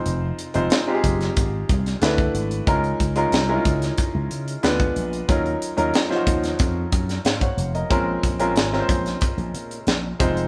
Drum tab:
HH |x-xxx-xxx-xxxxxx|xxxxx-xxx-xxxxxx|xxxxx-xxx-xxxxxx|x-xxx-xxxxxxx-xx|
SD |----o--o---oo---|----o--o----o---|----oo-o---oo---|----oo-o----o---|
BD |------o-o-o--o--|o-o---o-o----o--|o-----o-o-o--o--|o-o---o-o-----o-|